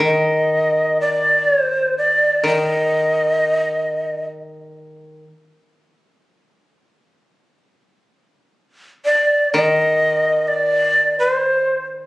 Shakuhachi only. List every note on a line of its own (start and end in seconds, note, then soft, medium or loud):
0.05 0.98 D#5 medium
1.01 1.49 D5 medium
1.49 1.61 C#5 medium
1.61 1.94 C5 medium
1.98 2.43 D5 medium
2.46 4.26 D#5 medium
9.06 9.51 D5 medium
9.54 10.49 D#5 medium
10.48 11.19 D5 medium
11.19 11.32 B4 medium
11.32 11.86 C5 medium